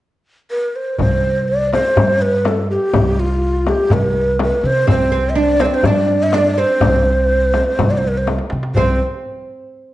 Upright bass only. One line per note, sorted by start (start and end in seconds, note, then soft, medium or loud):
0.99 1.78 C2 medium
1.98 2.75 G2 medium
2.93 3.72 C2 medium
3.91 4.50 C2 medium
4.63 4.83 C3 medium
4.88 5.66 C2 medium
5.84 6.62 G2 medium
6.82 7.60 C2 medium
7.80 8.38 C2 medium
8.52 8.71 C3 medium
8.76 8.98 C2 medium